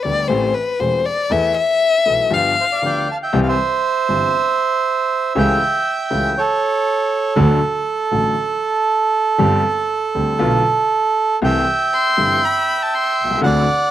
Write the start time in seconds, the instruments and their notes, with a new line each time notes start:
0.03 double bass D2, grand piano D2 D3 G3 B3 G4, violin D5
0.28 grand piano A1 A2 E3 A3 C4 G4, double bass A1, violin C5
0.54 violin B4
0.80 grand piano E1 E2 E3 A3 C4 G4, double bass E1, violin C5
1.06 violin D5
1.30 double bass E2, grand piano E2 E3 A3 B3 A4, violin E5
1.57 violin E5
2.05 grand piano B1 B2 E3 A3 B3 A4, double bass B1
2.30 grand piano G1 G2 F3 B3 D4 G4, violin F5
2.60 bandoneon C5 E5
2.71 bandoneon D5 F5
2.82 grand piano D2 D3 F3 B3 D4 G4, bandoneon G5
2.86 bandoneon D5
3.11 bandoneon F5 A5
3.23 bandoneon E5 G5
3.33 grand piano C2 C3 E3 G3 C4 G4, double bass C2
3.42 bandoneon F5
3.48 bandoneon C5 E5
4.09 grand piano G1 G2 E3 G3 C4 G4, double bass G1
5.35 grand piano C#2 C#3 E3 A3 C#4 G4, double bass C#2, bandoneon G5
5.40 bandoneon E5
6.10 grand piano C#2 C#3 E3 A3 C#4 G4, double bass C#2
6.38 bandoneon A4 C#5
7.36 double bass D2, grand piano D2 D3 F#3 A3 F#4
8.11 grand piano A1 A2 D3 F#3 A3 F#4, double bass A1
9.38 grand piano G1 G2 D3 G3 C4 G4, double bass G1
10.15 grand piano D2 D3 G3 C4 G4, double bass D2
10.39 grand piano B1 B2 D3 A3 B3 F4, double bass B1
11.41 grand piano C2 C3 E3 A3 C4 G4, double bass C2, bandoneon E5 G5
11.94 violin C6
12.17 grand piano G1 G2 E3 A3 C4 G4, double bass G1
12.45 violin B5
12.82 violin A5
12.95 violin C6
13.19 double bass C2
13.24 grand piano B1
13.30 grand piano C2
13.36 grand piano C#2
13.41 grand piano D2 D3 A3 C4 F#4, double bass D2, bandoneon F#5
13.46 bandoneon D5